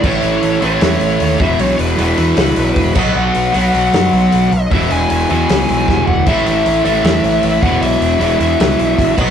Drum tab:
CC |x-------|-------x|--------|--------|
HH |-ooooooo|ooooooo-|-ooooooo|oooooo--|
SD |----o---|----o---|----o---|----o-o-|
FT |--------|--------|--------|-------o|
BD |o------o|------oo|--------|o-----o-|

CC |x-------|-------x|
HH |-ooooooo|ooooooo-|
SD |----o---|----o---|
FT |--------|--------|
BD |o------o|------oo|